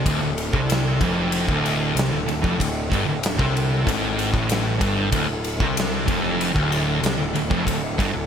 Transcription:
Already playing: D3 E4 A4
0.06 D1 D2, kick, ride
0.22 D1 D2
0.38 ride
0.53 C2 C3, kick
0.70 snare, ride
1.01 F1 F2, kick, ride
1.32 ride
1.48 D1 D2, kick
1.66 ride
1.95 C2 C3, ride
1.99 snare
2.12 D1 D2
2.27 D1 D2, ride
2.43 F1 F2, kick
2.60 D1 D2, kick, ride
2.90 G1 G2, kick, ride
2.94 G2
3.07 D1 D2
3.23 snare, ride
3.38 C2 C3, kick
3.57 ride
3.87 G#1 G#2, kick, ride
4.19 ride
4.34 A1 A2, kick
4.49 snare, ride
4.81 G1 G2, kick, ride
5.12 D1 D2, kick, ride
5.28 D1 D2
5.44 ride
5.60 C2 C3, kick
5.77 snare, ride
6.07 F1 F2, kick, ride
6.41 ride
6.54 D1 D2, kick
6.72 ride
7.02 C2 C3, ride
7.06 snare
7.18 D1 D2
7.33 D1 D2, ride
7.50 F1 F2, kick
7.66 D1 D2, kick, ride
7.98 G1 G2, kick, ride
8.13 D1 D2

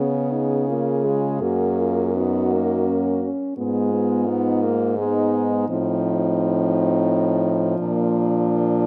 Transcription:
Already playing: C#3 B3 C#4 G#4
0.33 D#4
0.68 A#3 F4
1.04 G#3
1.41 F#2 A#3 F#4
1.80 F4
2.14 B3 D#4 F#4
2.52 A#3
2.87 C#4
3.23 C#4
3.57 G#2 G#3 B3 F4
3.93 B3
4.27 B3 D#4
4.62 A#3
4.96 G#3 B3 D#4
5.69 A2 F3 C4 D#4
7.78 A#2 A#3 D4

